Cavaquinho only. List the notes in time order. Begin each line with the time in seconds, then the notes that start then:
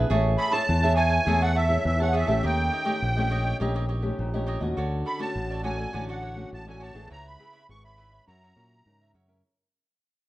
0.10 G#4 C#5 E5 A5
0.38 G#4 C#5 E5 A5
0.52 G#4 C#5 E5 A5
0.83 C#5 E5 A5
0.96 G#4 C#5 E5 A5
1.10 C#5 E5 A5
1.26 G#4 C#5 E5 A5
1.42 G#4 C#5 E5 A5
1.55 C#5 E5 A5
2.00 C#5 E5 A5
2.13 G#4 C#5 E5 A5
2.27 C#5 E5 A5
2.43 G4 C#5 D#5
2.71 G4 C#5 D#5
2.85 G4 C#5 D#5
3.16 C#5 D#5
3.30 G4 C#5 D#5
3.44 C#5 D#5
3.60 G4 C#5 D#5
3.75 G4 C#5 D#5
3.88 G4 C#5 D#5
4.34 C#5 D#5
4.46 G4 C#5 D#5
4.60 C#5 D#5
4.77 F#4 A4 C#5 D5
5.05 F#4 A4 C#5 D5
5.19 F#4 A4 C#5 D5
5.50 A4 C#5 D5
5.63 F#4 A4 C#5 D5
5.77 A4 C#5 D5
5.93 F#4 A4 C#5 D5
6.09 F#4 A4 C#5 D5
6.21 F#4 A4 C#5 D5
6.67 A4 C#5 D5
6.80 F#4 A4 C#5 D5
6.94 A4 C#5 D5
7.10 E4 B4 C#5 E5
7.39 E4 B4 C#5 E5
7.52 E4 B4 C#5 E5
7.84 B4 C#5 E5
7.97 E4 B4 C#5 E5
8.12 B4 C#5 E5
8.28 F#4 A#4 C#5 E5
8.43 F#4 A#4 C#5 E5
8.56 F#4 A#4 C#5 E5
9.01 A#4 C#5 E5
9.14 F#4 A#4 C#5 E5
9.28 A#4 C#5 E5